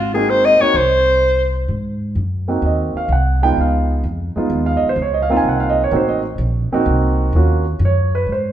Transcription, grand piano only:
0.14 A#3 C4 D#4 F#4
0.60 A#3 C4 D#4 F#4
2.48 A#3 C4 D#4 F#4
2.66 D#5
2.97 F5
3.12 F#5
3.42 G#3 B3 D#4 F4 G5
3.61 F5
4.36 G#3 B3 D#4 F4
4.66 F5
4.77 D#5
4.89 C5
5.02 C#5
5.14 D#5
5.22 F5
5.29 A#3 C4 D#4 F4
5.37 G#5
5.49 F#5
5.60 F5
5.70 D#5
5.84 C#5
5.91 A#3 C4 D#4 F#4
5.96 C5
6.08 D#5
6.72 A#3 C4 D#4 F#4
7.35 A#3 C#4 F4 F#4
7.85 C#5
8.15 B4
8.32 C5

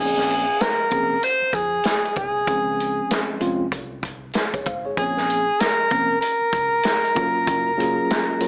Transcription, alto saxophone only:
0.00 G#4
0.61 A#4
1.24 C5
1.54 G#4
2.17 G#4
4.98 G#4
5.60 A#4
6.20 A#4

